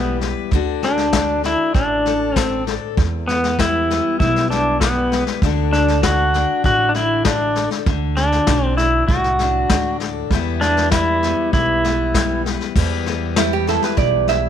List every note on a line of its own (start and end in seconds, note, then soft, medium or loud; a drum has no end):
0.00 0.31 B1 medium
0.00 0.52 E2 medium
0.00 0.50 G3 medium
0.00 0.18 B3 medium
0.00 0.50 B3 medium
0.00 0.50 E4 medium
0.21 0.49 B4 medium
0.21 snare soft
0.51 1.53 D2 medium
0.51 2.98 D3 medium
0.51 1.13 D4 medium
0.51 0.83 F#4 medium
0.51 kick medium
0.51 snare soft
0.55 2.06 A4 medium
0.83 1.41 D4 medium
0.83 2.94 F#4 medium
0.83 snare soft
0.97 snare soft
1.13 1.44 D4 medium
1.13 kick medium
1.13 snare loud
1.13 hi-hat pedal medium
1.44 2.35 D4 medium
1.44 1.75 E4 medium
1.44 snare soft
1.74 2.76 A1 medium
1.74 2.94 A2 medium
1.74 2.38 D4 medium
1.74 kick loud
1.74 snare soft
2.06 2.67 A4 medium
2.06 snare soft
2.36 2.63 C4 medium
2.36 2.94 D4 medium
2.36 kick medium
2.36 snare medium
2.36 hi-hat pedal medium
2.67 2.94 A4 medium
2.67 snare soft
2.97 3.99 E2 medium
2.97 4.20 E2 medium
2.97 kick loud
2.97 snare soft
3.28 3.59 B3 medium
3.28 3.90 B3 soft
3.28 snare soft
3.43 snare soft
3.59 4.82 G3 medium
3.59 4.19 E4 loud
3.59 kick medium
3.59 snare loud
3.59 hi-hat pedal medium
3.90 5.40 B3 medium
3.90 snare soft
4.20 5.21 B1 medium
4.20 5.43 E2 medium
4.20 4.50 E4 medium
4.20 kick loud
4.20 snare soft
4.36 snare soft
4.50 4.79 D4 medium
4.50 5.40 E4 medium
4.50 snare soft
4.80 5.40 G3 medium
4.80 5.23 B3 medium
4.80 kick medium
4.80 snare loud
4.80 hi-hat pedal medium
5.12 5.40 B4 medium
5.12 snare soft
5.27 snare soft
5.42 6.43 D2 medium
5.42 7.85 D3 medium
5.42 6.05 D4 medium
5.42 5.74 F#4 medium
5.42 7.56 A4 medium
5.42 kick loud
5.42 snare soft
5.73 6.04 D4 medium
5.73 7.84 F#4 soft
5.73 snare soft
5.88 snare soft
6.03 6.35 D4 medium
6.03 6.64 F#4 medium
6.03 kick medium
6.03 snare loud
6.03 hi-hat pedal medium
6.34 6.96 D4 medium
6.34 snare soft
6.64 7.65 A1 medium
6.64 7.84 A2 medium
6.64 6.90 F#4 loud
6.64 kick loud
6.64 snare soft
6.89 6.95 D4 medium
6.94 7.25 D4 medium
6.94 7.26 E4 medium
6.94 snare soft
7.25 7.84 D4 medium
7.25 7.69 D4 medium
7.25 kick medium
7.25 snare loud
7.25 hi-hat pedal medium
7.55 7.84 A4 medium
7.55 snare soft
7.71 snare soft
7.86 8.37 D2 medium
7.86 10.31 D3 medium
7.86 kick loud
7.86 snare soft
8.16 8.66 D4 medium
8.16 10.28 F#4 medium
8.16 snare soft
8.32 snare soft
8.47 9.00 B1 medium
8.47 8.78 D4 medium
8.47 kick medium
8.47 snare loud
8.47 hi-hat pedal medium
8.66 8.77 C4 medium
8.77 9.40 D4 medium
8.77 9.10 E4 medium
8.77 snare soft
9.08 9.61 C2 medium
9.08 10.28 A2 medium
9.08 9.96 F#4 medium
9.08 kick loud
9.08 snare soft
9.24 snare soft
9.39 9.70 D4 medium
9.39 snare soft
9.70 10.22 D2 medium
9.70 10.28 D4 medium
9.70 kick medium
9.70 snare loud
9.70 hi-hat pedal medium
10.00 10.29 A4 medium
10.00 snare soft
10.30 11.32 E2 medium
10.30 11.53 E2 medium
10.30 10.93 G3 medium
10.30 10.63 B3 soft
10.30 kick medium
10.30 snare soft
10.34 12.74 E4 medium
10.34 12.46 B4 medium
10.61 11.23 B3 medium
10.61 10.91 D4 medium
10.61 snare soft
10.77 snare soft
10.91 12.14 G3 medium
10.91 11.52 E4 loud
10.91 kick medium
10.91 snare loud
10.91 hi-hat pedal medium
11.23 11.84 B3 medium
11.23 snare soft
11.53 12.54 B1 medium
11.53 12.75 E2 medium
11.53 12.41 E4 medium
11.53 kick loud
11.53 snare soft
11.84 12.73 B3 medium
11.84 snare soft
12.14 12.73 G3 medium
12.14 kick medium
12.14 snare loud
12.14 hi-hat pedal medium
12.46 12.73 B4 medium
12.46 snare soft
12.61 snare soft
12.76 13.77 E2 medium
12.76 13.96 E2 medium
12.76 13.36 G3 medium
12.76 13.07 B3 medium
12.76 13.68 E4 medium
12.76 14.49 B4 medium
12.76 kick loud
12.76 snare soft
12.76 crash medium
13.06 14.49 B3 medium
13.06 snare soft
13.36 14.49 G3 medium
13.36 13.52 E4 medium
13.36 snare loud
13.36 hi-hat pedal medium
13.53 13.68 G4 medium
13.67 14.29 E4 medium
13.67 13.83 A4 medium
13.67 snare soft
13.82 13.98 B4 medium
13.82 snare soft
13.97 14.49 B1 medium
13.97 14.49 E2 medium
13.97 14.28 D5 medium
13.97 kick loud
13.97 snare soft
14.28 14.49 E4 medium
14.28 14.49 E5 medium
14.28 snare soft